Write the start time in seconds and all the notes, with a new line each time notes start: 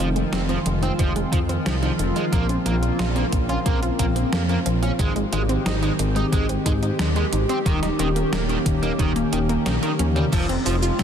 Already playing: D#3 F3 G#3 C4 F4
0.00 F1
0.16 G#3, closed hi-hat
0.33 F1 D#3 C4, snare, closed hi-hat
0.49 F3 C4, closed hi-hat
0.66 F1 D#3, closed hi-hat
0.83 C4 D#4, closed hi-hat
0.99 F1 D#3 F3, kick, closed hi-hat
1.16 G#3, closed hi-hat
1.33 F2 D#3 F3, kick, closed hi-hat
1.49 C4, closed hi-hat
1.66 C2 D#3 F3, snare, closed hi-hat
1.82 F3 D#4, closed hi-hat
1.99 F1 D#3, closed hi-hat
2.16 G#3, closed hi-hat
2.32 A#1 C#3 F3 A#3, kick, closed hi-hat
2.49 C#4, closed hi-hat
2.66 A#1 F3 A#3, closed hi-hat
2.82 F4, closed hi-hat
2.99 A#1 F3 F4, snare, closed hi-hat
3.16 A#3 C4, closed hi-hat
3.32 A#1 F3, kick, closed hi-hat
3.49 C#4 F4, closed hi-hat
3.66 A#1 F3 A#3, kick, closed hi-hat
3.82 F4, closed hi-hat
3.99 A#1 F3 A#3, kick, closed hi-hat
4.16 C4, closed hi-hat
4.33 F2 F3 A#3, snare, closed hi-hat
4.49 A#3 C#4, closed hi-hat
4.66 A#1 F3, closed hi-hat
4.82 C#4 F4, closed hi-hat
4.99 G#1 D#3 G#3 G4, kick, closed hi-hat
5.16 G#3, closed hi-hat
5.33 G#1 D#3 G#3, closed hi-hat
5.49 C4, closed hi-hat
5.66 G#1 D#3 D#4, snare, closed hi-hat
5.83 G#3 D#4, closed hi-hat
5.99 G#1 D#3, closed hi-hat
6.16 G#3 D#4, closed hi-hat
6.33 G#1 D#3 G#3, kick, closed hi-hat
6.49 C4, closed hi-hat
6.66 G#2 D#3 G#3, kick, closed hi-hat
6.83 D#4, closed hi-hat
6.99 D#2 D#3 G#3, snare, closed hi-hat
7.16 G#3, closed hi-hat
7.33 G#1 D#3, closed hi-hat
7.49 C4, closed hi-hat
7.66 D#1 D#3 A#3 C#4, kick, closed hi-hat
7.83 D#4, snare, closed hi-hat
7.99 D#1 D#3, closed hi-hat
8.16 A#3, closed hi-hat
8.32 D#1 D#3 A#3, snare, closed hi-hat
8.49 D#3 C#4, closed hi-hat
8.66 D#1 D#3, kick, closed hi-hat
8.83 A#3 D#4, closed hi-hat
8.99 D#1 D#3, kick, closed hi-hat
9.16 A#3, closed hi-hat
9.33 D#1 D#3 D#4, closed hi-hat
9.49 A#3, closed hi-hat
9.66 A#1 D#3 C#4, snare, closed hi-hat
9.83 D#3 A#4, closed hi-hat
9.99 D#2 C#4, closed hi-hat, high tom
10.16 G3 C#4, closed hi-hat, mid tom
10.33 F1 F3 G#3 C4 F4, kick, closed hi-hat, crash, shaker
10.49 C4, closed hi-hat
10.66 F1 F3, open hi-hat, shaker
10.83 F4, closed hi-hat, shaker
10.99 F1 F3 C4, kick, snare, closed hi-hat, shaker